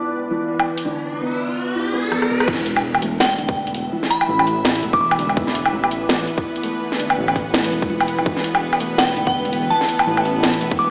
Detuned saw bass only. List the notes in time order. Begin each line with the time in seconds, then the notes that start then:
2.48 E1
4.29 A1
4.83 E1
5.73 A1
7.18 A1
7.72 E1
8.18 F#1
8.26 E1
10.07 A1
10.61 E1